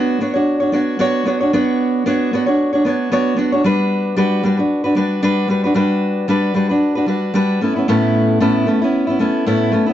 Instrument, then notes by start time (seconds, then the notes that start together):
steel-string acoustic guitar
Already playing: B3 D4 F#4 C#5
0.21 B3 D4 F#4 C#5
0.34 D4 F#4 C#5
0.60 D4 F#4 C#5
0.72 B3 D4 F#4 C#5
0.99 B3 D4 F#4 C#5
1.25 B3 D4 F#4 C#5
1.40 D4 F#4 C#5
1.53 B3 D4 F#4 C#5
2.06 B3 D4 F#4 C#5
2.33 B3 D4 F#4 C#5
2.46 D4 F#4 C#5
2.73 D4 F#4 C#5
2.85 B3 D4 F#4 C#5
3.12 B3 D4 F#4 C#5
3.36 B3 D4 F#4 C#5
3.52 D4 F#4 C#5
3.64 G3 D4 F#4 B4
4.16 G3 D4 F#4 B4
4.43 G3 D4 F#4 B4
4.57 D4 F#4 B4
4.84 D4 F#4 B4
4.95 G3 D4 F#4 B4
5.22 G3 D4 F#4 B4
5.48 G3 D4 F#4 B4
5.64 D4 F#4 B4
5.74 G3 D4 F#4 B4
6.28 G3 D4 F#4 B4
6.54 G3 D4 F#4 B4
6.69 D4 F#4 B4
6.95 D4 F#4 B4
7.06 G3 D4 F#4 B4
7.34 G3 D4 F#4 B4
7.61 A3 B3 C#4 E4
7.76 B3 C#4 E4
7.88 A2 A3 B3 C#4 E4
8.40 A2 A3 B3 C#4 E4
8.67 A3 B3 C#4 E4
8.82 B3 C#4 E4
9.07 B3 C#4 E4
9.19 A3 B3 C#4 E4
9.46 A2 A3 B3 C#4 E4
9.72 A3 B3 C#4 E4
9.86 B3 C#4 E4